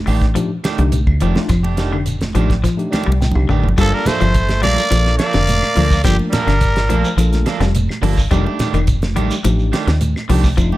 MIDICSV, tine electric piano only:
0, 0, Header, 1, 2, 480
1, 0, Start_track
1, 0, Key_signature, -2, "minor"
1, 0, Tempo, 567644
1, 1269, Time_signature, 4, 2, 24, 8
1, 9110, End_track
2, 0, Start_track
2, 0, Title_t, "Tine electric piano"
2, 0, Program_c, 0, 4
2, 293, Note_on_c, 0, 57, 85
2, 297, Note_on_c, 0, 62, 79
2, 303, Note_on_c, 0, 63, 71
2, 307, Note_on_c, 0, 67, 96
2, 421, Note_off_c, 0, 57, 0
2, 423, Note_off_c, 0, 62, 0
2, 427, Note_off_c, 0, 63, 0
2, 428, Note_off_c, 0, 67, 0
2, 660, Note_on_c, 0, 57, 91
2, 660, Note_on_c, 0, 62, 73
2, 668, Note_on_c, 0, 63, 85
2, 672, Note_on_c, 0, 67, 92
2, 823, Note_off_c, 0, 57, 0
2, 823, Note_off_c, 0, 62, 0
2, 827, Note_off_c, 0, 63, 0
2, 829, Note_off_c, 0, 67, 0
2, 1138, Note_on_c, 0, 57, 83
2, 1141, Note_on_c, 0, 62, 78
2, 1150, Note_on_c, 0, 63, 81
2, 1150, Note_on_c, 0, 65, 97
2, 1262, Note_off_c, 0, 57, 0
2, 1264, Note_off_c, 0, 62, 0
2, 1268, Note_off_c, 0, 63, 0
2, 1268, Note_off_c, 0, 65, 0
2, 1503, Note_on_c, 0, 57, 81
2, 1510, Note_on_c, 0, 62, 80
2, 1514, Note_on_c, 0, 63, 79
2, 1517, Note_on_c, 0, 67, 90
2, 1667, Note_off_c, 0, 57, 0
2, 1671, Note_off_c, 0, 62, 0
2, 1673, Note_off_c, 0, 63, 0
2, 1674, Note_off_c, 0, 67, 0
2, 1983, Note_on_c, 0, 57, 89
2, 1985, Note_on_c, 0, 62, 79
2, 1995, Note_on_c, 0, 63, 76
2, 1998, Note_on_c, 0, 67, 94
2, 2109, Note_off_c, 0, 57, 0
2, 2110, Note_off_c, 0, 62, 0
2, 2115, Note_off_c, 0, 63, 0
2, 2116, Note_off_c, 0, 67, 0
2, 2341, Note_on_c, 0, 57, 91
2, 2345, Note_on_c, 0, 62, 69
2, 2350, Note_on_c, 0, 63, 74
2, 2358, Note_on_c, 0, 67, 89
2, 2458, Note_on_c, 0, 74, 77
2, 2505, Note_off_c, 0, 57, 0
2, 2507, Note_off_c, 0, 62, 0
2, 2510, Note_off_c, 0, 63, 0
2, 2514, Note_off_c, 0, 67, 0
2, 2688, Note_off_c, 0, 74, 0
2, 2712, Note_on_c, 0, 79, 71
2, 2828, Note_on_c, 0, 57, 73
2, 2828, Note_on_c, 0, 62, 73
2, 2836, Note_on_c, 0, 63, 66
2, 2841, Note_on_c, 0, 67, 86
2, 2948, Note_off_c, 0, 62, 0
2, 2949, Note_off_c, 0, 57, 0
2, 2953, Note_off_c, 0, 63, 0
2, 2955, Note_off_c, 0, 67, 0
2, 3159, Note_off_c, 0, 79, 0
2, 3184, Note_on_c, 0, 58, 73
2, 3189, Note_on_c, 0, 62, 68
2, 3193, Note_on_c, 0, 65, 71
2, 3199, Note_on_c, 0, 69, 81
2, 3468, Note_off_c, 0, 58, 0
2, 3470, Note_off_c, 0, 62, 0
2, 3472, Note_off_c, 0, 65, 0
2, 3475, Note_off_c, 0, 69, 0
2, 4025, Note_on_c, 0, 65, 72
2, 4042, Note_on_c, 0, 69, 70
2, 4069, Note_off_c, 0, 65, 0
2, 4077, Note_off_c, 0, 69, 0
2, 4146, Note_on_c, 0, 58, 63
2, 4149, Note_on_c, 0, 62, 60
2, 4152, Note_on_c, 0, 65, 64
2, 4156, Note_on_c, 0, 69, 78
2, 4388, Note_off_c, 0, 58, 0
2, 4390, Note_off_c, 0, 62, 0
2, 4391, Note_off_c, 0, 65, 0
2, 4393, Note_off_c, 0, 69, 0
2, 4863, Note_on_c, 0, 58, 80
2, 4868, Note_on_c, 0, 62, 66
2, 4871, Note_on_c, 0, 65, 67
2, 4880, Note_on_c, 0, 69, 79
2, 4949, Note_off_c, 0, 58, 0
2, 4951, Note_off_c, 0, 62, 0
2, 4953, Note_off_c, 0, 65, 0
2, 4957, Note_off_c, 0, 69, 0
2, 5106, Note_on_c, 0, 58, 76
2, 5113, Note_on_c, 0, 62, 69
2, 5113, Note_on_c, 0, 65, 69
2, 5117, Note_on_c, 0, 70, 78
2, 5388, Note_off_c, 0, 58, 0
2, 5392, Note_off_c, 0, 62, 0
2, 5392, Note_off_c, 0, 65, 0
2, 5394, Note_off_c, 0, 70, 0
2, 5956, Note_on_c, 0, 65, 88
2, 5966, Note_on_c, 0, 72, 93
2, 5994, Note_off_c, 0, 65, 0
2, 5999, Note_off_c, 0, 72, 0
2, 6067, Note_on_c, 0, 58, 83
2, 6072, Note_on_c, 0, 62, 82
2, 6075, Note_on_c, 0, 65, 78
2, 6081, Note_on_c, 0, 69, 93
2, 6308, Note_off_c, 0, 58, 0
2, 6310, Note_off_c, 0, 62, 0
2, 6312, Note_off_c, 0, 65, 0
2, 6315, Note_off_c, 0, 69, 0
2, 6789, Note_on_c, 0, 58, 86
2, 6793, Note_on_c, 0, 62, 83
2, 6799, Note_on_c, 0, 65, 84
2, 6799, Note_on_c, 0, 67, 91
2, 6871, Note_off_c, 0, 58, 0
2, 6873, Note_off_c, 0, 62, 0
2, 6876, Note_off_c, 0, 65, 0
2, 6876, Note_off_c, 0, 67, 0
2, 7025, Note_on_c, 0, 57, 93
2, 7033, Note_on_c, 0, 62, 76
2, 7036, Note_on_c, 0, 63, 86
2, 7040, Note_on_c, 0, 67, 102
2, 7307, Note_off_c, 0, 57, 0
2, 7311, Note_off_c, 0, 62, 0
2, 7312, Note_off_c, 0, 63, 0
2, 7314, Note_off_c, 0, 67, 0
2, 7865, Note_on_c, 0, 63, 89
2, 7877, Note_on_c, 0, 67, 90
2, 7907, Note_off_c, 0, 63, 0
2, 7914, Note_off_c, 0, 67, 0
2, 7984, Note_on_c, 0, 57, 80
2, 7989, Note_on_c, 0, 62, 70
2, 7991, Note_on_c, 0, 63, 75
2, 7999, Note_on_c, 0, 67, 93
2, 8225, Note_off_c, 0, 57, 0
2, 8228, Note_off_c, 0, 62, 0
2, 8229, Note_off_c, 0, 63, 0
2, 8232, Note_off_c, 0, 67, 0
2, 8711, Note_on_c, 0, 57, 90
2, 8712, Note_on_c, 0, 62, 78
2, 8720, Note_on_c, 0, 63, 79
2, 8723, Note_on_c, 0, 67, 98
2, 8790, Note_off_c, 0, 57, 0
2, 8791, Note_off_c, 0, 62, 0
2, 8795, Note_off_c, 0, 63, 0
2, 8796, Note_off_c, 0, 67, 0
2, 8949, Note_on_c, 0, 57, 92
2, 8951, Note_on_c, 0, 62, 81
2, 8956, Note_on_c, 0, 63, 88
2, 8956, Note_on_c, 0, 65, 92
2, 9110, Note_off_c, 0, 57, 0
2, 9110, Note_off_c, 0, 62, 0
2, 9110, Note_off_c, 0, 63, 0
2, 9110, Note_off_c, 0, 65, 0
2, 9110, End_track
0, 0, End_of_file